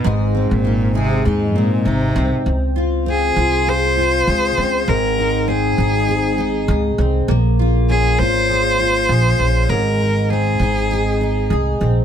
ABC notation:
X:1
M:4/4
L:1/16
Q:"Swing 16ths" 1/4=100
K:Db
V:1 name="Cello"
A,,3 B,,3 C,2 A,,2 B,,2 C,3 z | z4 A4 c8 | B4 A8 z4 | z4 A2 c8- c2 |
B4 A8 z4 |]
V:2 name="Steel-string acoustic guitar"
[A,,A]2 C2 E2 A2 E2 C2 E2 C2 | z2 F2 C2 F2 A2 F2 A2 C2 | A,,2 E2 C2 E2 A2 E2 A2 C2 | B,2 F2 D2 F2 A2 F2 A2 D2 |
A,,2 E2 C2 E2 A2 E2 A2 C2 |]
V:3 name="Upright bass" clef=bass
A,,,3 A,,,4- A,,, E,,2 A,,2 A,,,2 C,, z | D,,6 C,,6 D,,2 D,,2 | A,,,6 A,,,6 D,,2 C,,2 | B,,,6 A,,,6 B,,,2 B,,,2 |
A,,,6 A,,,6 C,,2 B,,,2 |]